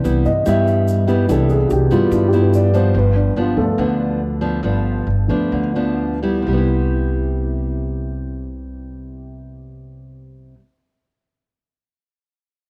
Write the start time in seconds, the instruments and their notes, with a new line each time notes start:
Already playing: nylon-string guitar C3, grand piano E3 B3 D4
0.04 upright bass C2, nylon-string guitar G3 B3 E4, shaker
0.25 upright bass G2, grand piano D#5, shaker
0.46 nylon-string guitar G2 G3 B3 E4, upright bass G2, grand piano E5, shaker
0.67 shaker
0.88 shaker
1.07 nylon-string guitar G3 B3 E4, grand piano B4, shaker
1.28 upright bass C2, nylon-string guitar C3 G3 B3 E4, grand piano E3 B3 D4 A4, shaker
1.49 grand piano G#4, shaker
1.69 upright bass C2, grand piano F#4, shaker
1.73 grand piano G4
1.91 upright bass G2, nylon-string guitar G3 B3 E4, grand piano F4, shaker
2.11 upright bass G2, nylon-string guitar G2, grand piano E4, shaker
2.28 grand piano G4
2.33 nylon-string guitar G3 B3 E4, shaker
2.42 grand piano B4
2.54 grand piano D5, shaker
2.74 nylon-string guitar F3 B3 D4, grand piano C5, shaker
2.94 upright bass G1, nylon-string guitar G2, grand piano B4
3.16 grand piano D4
3.36 upright bass G1, nylon-string guitar F3 B3 D4, grand piano F4
3.56 upright bass D2, grand piano F3 A3 B3 A4
3.78 upright bass D2, nylon-string guitar D3 F3 B3 D4, grand piano B4
4.41 nylon-string guitar F3 B3 D4
4.63 upright bass G1, nylon-string guitar G2 F3 B3 D4
5.07 upright bass G1
5.28 upright bass D2, grand piano F3 A3 B3, nylon-string guitar F3 B3 D4
5.52 upright bass D2, nylon-string guitar D3
5.75 nylon-string guitar F3 B3 D4
6.23 nylon-string guitar G3 B3 E4
6.42 nylon-string guitar C3
6.47 upright bass C2, nylon-string guitar G3
6.53 nylon-string guitar B3
6.57 nylon-string guitar E4